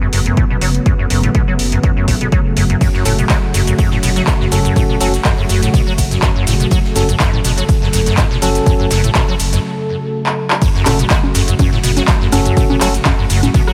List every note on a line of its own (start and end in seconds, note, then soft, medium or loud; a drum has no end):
0.00 0.08 F#2 medium
0.00 10.58 C#3 medium
0.00 10.58 F#3 medium
0.00 10.58 A3 medium
0.00 2.80 B3 medium
0.13 0.30 F#1 medium
0.13 0.20 F#2 medium
0.13 open hi-hat loud
0.26 0.35 F#2 medium
0.26 closed hi-hat medium
0.37 0.44 A2 medium
0.37 kick loud
0.37 closed hi-hat soft
0.50 0.57 B2 medium
0.61 0.79 F#1 medium
0.61 0.69 F#3 medium
0.61 open hi-hat loud
0.75 closed hi-hat medium
0.86 0.93 F#2 medium
0.86 kick loud
0.86 closed hi-hat soft
0.99 1.05 F#2 medium
1.10 1.28 F#1 loud
1.10 1.21 F#2 medium
1.10 open hi-hat loud
1.23 1.30 A2 medium
1.23 closed hi-hat medium
1.35 1.42 B2 medium
1.35 kick loud
1.35 closed hi-hat soft
1.48 1.54 F#3 medium
1.59 1.77 F#1 medium
1.59 open hi-hat loud
1.72 1.78 F#2 medium
1.72 closed hi-hat medium
1.83 1.91 F#2 medium
1.83 kick loud
1.83 closed hi-hat soft
1.97 2.06 F#2 medium
2.08 2.25 F#1 medium
2.08 2.15 A2 medium
2.08 kick medium
2.08 open hi-hat loud
2.21 2.27 B2 medium
2.21 closed hi-hat medium
2.32 2.40 F#3 medium
2.32 kick loud
2.32 closed hi-hat soft
2.57 2.74 F#1 medium
2.57 2.64 F#2 medium
2.57 open hi-hat loud
2.70 2.76 F#2 medium
2.70 closed hi-hat medium
2.81 2.88 F#2 medium
2.81 6.70 F#4 medium
2.81 kick loud
2.81 closed hi-hat soft
2.81 closed hi-hat medium
2.81 cabasa soft
2.94 3.04 F#2 medium
2.94 snare soft
3.05 3.23 F#1 loud
3.05 3.13 A2 medium
3.05 3.16 C#4 medium
3.05 3.16 F#4 medium
3.05 3.16 A4 medium
3.05 closed hi-hat medium
3.05 open hi-hat loud
3.05 cabasa medium
3.19 3.25 B2 medium
3.19 closed hi-hat medium
3.19 cabasa soft
3.29 3.37 F#3 medium
3.29 kick loud
3.29 snare loud
3.29 clap loud
3.29 closed hi-hat medium
3.29 closed hi-hat soft
3.29 cabasa soft
3.54 3.72 F#1 medium
3.54 3.62 F#2 medium
3.54 snare soft
3.54 closed hi-hat medium
3.54 open hi-hat loud
3.54 cabasa medium
3.67 3.74 F#2 medium
3.67 closed hi-hat medium
3.67 cabasa soft
3.78 3.90 F#2 medium
3.78 kick loud
3.78 closed hi-hat medium
3.78 closed hi-hat soft
3.78 cabasa soft
3.91 3.98 A2 medium
3.91 snare soft
4.03 4.20 F#1 medium
4.03 4.10 B2 medium
4.03 snare soft
4.03 closed hi-hat medium
4.03 open hi-hat loud
4.03 cabasa medium
4.16 4.22 F#3 medium
4.16 snare medium
4.16 closed hi-hat medium
4.16 cabasa soft
4.27 kick loud
4.27 snare loud
4.27 clap loud
4.27 closed hi-hat soft
4.27 closed hi-hat medium
4.27 cabasa soft
4.41 4.47 F#2 medium
4.41 snare soft
4.52 4.69 F#1 medium
4.52 4.59 F#2 medium
4.52 4.98 C#4 medium
4.52 4.98 F#4 medium
4.52 4.98 A4 loud
4.52 closed hi-hat medium
4.52 open hi-hat loud
4.52 cabasa medium
4.65 4.74 F#2 medium
4.65 closed hi-hat medium
4.65 cabasa soft
4.76 4.83 A2 medium
4.76 kick loud
4.76 closed hi-hat medium
4.76 cabasa soft
4.89 4.96 B2 medium
5.00 5.18 F#1 loud
5.00 5.08 F#3 medium
5.00 5.12 C#4 medium
5.00 5.12 F#4 medium
5.00 5.12 A4 loud
5.00 closed hi-hat medium
5.00 open hi-hat medium
5.00 cabasa medium
5.14 snare soft
5.14 closed hi-hat medium
5.14 cabasa soft
5.24 5.32 F#2 medium
5.24 kick loud
5.24 snare loud
5.24 clap loud
5.24 closed hi-hat medium
5.24 open hi-hat medium
5.24 cabasa soft
5.38 5.44 F#2 medium
5.49 5.67 F#1 medium
5.49 5.60 F#2 medium
5.49 closed hi-hat medium
5.49 open hi-hat loud
5.49 cabasa medium
5.62 5.69 A2 medium
5.62 snare soft
5.62 closed hi-hat medium
5.62 cabasa soft
5.74 5.81 B2 medium
5.74 kick loud
5.74 closed hi-hat soft
5.74 closed hi-hat medium
5.74 cabasa soft
5.87 5.93 F#3 medium
5.87 closed hi-hat soft
5.98 6.16 F#1 medium
5.98 kick medium
5.98 closed hi-hat medium
5.98 open hi-hat medium
5.98 cabasa medium
6.11 6.17 F#2 medium
6.11 snare soft
6.11 closed hi-hat medium
6.11 cabasa soft
6.22 6.30 F#2 medium
6.22 kick loud
6.22 snare loud
6.22 clap loud
6.22 closed hi-hat medium
6.22 closed hi-hat soft
6.22 cabasa soft
6.36 6.45 F#2 medium
6.47 6.64 F#1 medium
6.47 6.54 A2 medium
6.47 snare medium
6.47 closed hi-hat medium
6.47 open hi-hat loud
6.47 cabasa medium
6.60 6.66 B2 medium
6.60 closed hi-hat medium
6.60 cabasa soft
6.71 6.79 F#3 medium
6.71 10.60 A4 medium
6.71 kick loud
6.71 closed hi-hat medium
6.71 cabasa soft
6.84 snare soft
6.96 7.13 F#1 loud
6.96 7.03 F#2 medium
6.96 7.07 C#4 medium
6.96 7.07 F#4 medium
6.96 7.07 A4 medium
6.96 closed hi-hat medium
6.96 open hi-hat loud
6.96 cabasa medium
7.09 7.15 F#2 medium
7.09 closed hi-hat medium
7.09 cabasa soft
7.20 7.31 F#2 medium
7.20 kick loud
7.20 snare loud
7.20 clap loud
7.20 closed hi-hat medium
7.20 cabasa soft
7.33 7.39 A2 medium
7.44 7.62 F#1 medium
7.44 7.52 B2 medium
7.44 snare soft
7.44 closed hi-hat medium
7.44 open hi-hat medium
7.44 cabasa medium
7.58 7.64 F#3 medium
7.58 closed hi-hat medium
7.58 cabasa soft
7.69 kick loud
7.69 closed hi-hat medium
7.69 cabasa soft
7.82 7.88 F#2 medium
7.82 snare soft
7.93 8.11 F#1 medium
7.93 8.01 F#2 medium
7.93 snare medium
7.93 closed hi-hat medium
7.93 open hi-hat medium
7.93 cabasa medium
8.06 8.16 F#2 medium
8.06 snare medium
8.06 closed hi-hat medium
8.06 cabasa soft
8.17 8.25 A2 medium
8.17 kick loud
8.17 snare loud
8.17 clap loud
8.17 closed hi-hat medium
8.17 closed hi-hat soft
8.17 cabasa soft
8.31 8.37 B2 medium
8.31 snare soft
8.42 8.60 F#1 medium
8.42 8.49 F#3 medium
8.42 8.88 C#4 medium
8.42 8.88 F#4 medium
8.42 8.88 A4 loud
8.42 closed hi-hat medium
8.42 open hi-hat loud
8.42 cabasa medium
8.55 snare soft
8.55 closed hi-hat medium
8.55 cabasa soft
8.66 8.74 F#2 medium
8.66 kick loud
8.66 closed hi-hat medium
8.66 cabasa soft
8.80 8.86 F#2 medium
8.91 9.08 F#1 loud
8.91 9.02 F#2 medium
8.91 snare medium
8.91 closed hi-hat medium
8.91 open hi-hat loud
8.91 cabasa medium
9.04 9.10 A2 medium
9.04 closed hi-hat medium
9.04 cabasa soft
9.15 9.23 B2 medium
9.15 kick loud
9.15 snare loud
9.15 clap loud
9.15 closed hi-hat medium
9.15 open hi-hat medium
9.15 cabasa soft
9.28 9.35 F#3 medium
9.40 9.57 F#1 medium
9.40 closed hi-hat medium
9.40 open hi-hat loud
9.40 cabasa medium
9.53 9.59 F#2 medium
9.53 snare soft
9.53 closed hi-hat medium
9.53 cabasa soft
10.26 clap medium
10.50 clap medium
10.62 10.69 F#2 medium
10.62 13.73 C#3 medium
10.62 13.73 F#3 medium
10.62 13.73 A3 medium
10.62 13.73 F#4 loud
10.62 kick loud
10.62 closed hi-hat medium
10.62 cabasa soft
10.75 10.84 F#2 medium
10.75 snare soft
10.85 11.03 F#1 loud
10.85 10.93 A2 medium
10.85 10.97 C#4 medium
10.85 10.97 F#4 medium
10.85 10.97 A4 medium
10.85 cross-stick medium
10.85 clap medium
10.85 closed hi-hat medium
10.85 open hi-hat loud
10.85 high conga medium
10.85 cabasa medium
10.99 11.05 B2 medium
10.99 closed hi-hat medium
10.99 cabasa soft
11.10 11.18 F#3 medium
11.10 kick loud
11.10 snare loud
11.10 clap loud
11.10 closed hi-hat medium
11.10 cabasa soft
11.24 high conga medium
11.34 11.52 F#1 medium
11.34 11.42 F#2 medium
11.34 snare medium
11.34 closed hi-hat medium
11.34 open hi-hat loud
11.34 cabasa medium
11.48 11.54 F#2 medium
11.48 closed hi-hat medium
11.48 cabasa soft
11.59 11.70 F#2 medium
11.59 kick loud
11.59 closed hi-hat loud
11.59 closed hi-hat medium
11.59 high conga medium
11.59 cabasa soft
11.72 11.79 A2 medium
11.72 snare soft
11.83 12.01 F#1 medium
11.83 11.91 B2 medium
11.83 snare medium
11.83 closed hi-hat medium
11.83 open hi-hat loud
11.83 cabasa medium
11.97 12.03 F#3 medium
11.97 snare medium
11.97 closed hi-hat medium
11.97 high conga medium
11.97 cabasa soft
12.07 kick loud
12.07 snare loud
12.07 clap loud
12.07 closed hi-hat medium
12.07 cabasa soft
12.21 12.27 F#2 medium
12.21 snare soft
12.32 12.50 F#1 medium
12.32 12.40 F#2 medium
12.32 12.78 C#4 medium
12.32 12.78 F#4 medium
12.32 12.78 A4 loud
12.32 cross-stick medium
12.32 closed hi-hat medium
12.32 open hi-hat loud
12.32 high conga medium
12.32 cabasa medium
12.45 12.55 F#2 medium
12.45 closed hi-hat medium
12.45 cabasa soft
12.57 12.64 A2 medium
12.57 kick loud
12.57 closed hi-hat medium
12.57 cabasa soft
12.70 12.76 B2 medium
12.70 high conga medium
12.81 12.99 F#1 loud
12.81 12.88 F#3 medium
12.81 12.92 C#4 medium
12.81 12.92 F#4 medium
12.81 12.92 A4 loud
12.81 cross-stick medium
12.81 clap medium
12.81 closed hi-hat medium
12.81 open hi-hat loud
12.81 cabasa medium
12.94 snare soft
12.94 closed hi-hat medium
12.94 cabasa soft
13.05 13.13 F#2 medium
13.05 kick loud
13.05 snare loud
13.05 clap loud
13.05 closed hi-hat medium
13.05 open hi-hat medium
13.05 high conga medium
13.05 cabasa soft
13.19 13.25 F#2 medium
13.30 13.47 F#1 medium
13.30 13.41 F#2 medium
13.30 closed hi-hat medium
13.30 open hi-hat loud
13.30 cabasa medium
13.43 13.49 A2 medium
13.43 snare soft
13.43 closed hi-hat medium
13.43 high conga medium
13.43 cabasa soft
13.54 13.62 B2 medium
13.54 kick loud
13.54 closed hi-hat medium
13.54 cabasa soft
13.67 13.73 F#3 medium
13.67 cross-stick medium
13.67 closed hi-hat soft